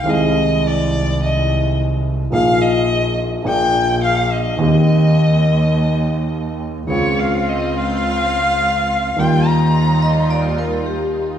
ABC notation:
X:1
M:4/4
L:1/16
Q:1/4=106
K:Eb
V:1 name="Violin"
e4 d4 e4 z4 | f2 e4 z2 g4 f2 e2- | e12- e2 z2 | _d2 f2 e2 f8- f2 |
g2 b6 z8 |]
V:2 name="Vibraphone"
z16 | z16 | z16 | z16 |
z6 e2 d2 B2 G3 z |]
V:3 name="String section"
z16 | z16 | z16 | [CF]16 |
[G,EF]16 |]
V:4 name="Grand piano" clef=bass
[C,,C,E,A,CA]16 | [B,,,B,,F,B,EA]8 [B,,,B,,F,B,DA]8 | [E,,E,B,CG]16 | [_D,,_D,A,CF]16 |
[E,,E,G,B,F]16 |]
V:5 name="Double bass" clef=bass
C,,16 | B,,,8 B,,,8 | E,,16 | _D,,16 |
E,,16 |]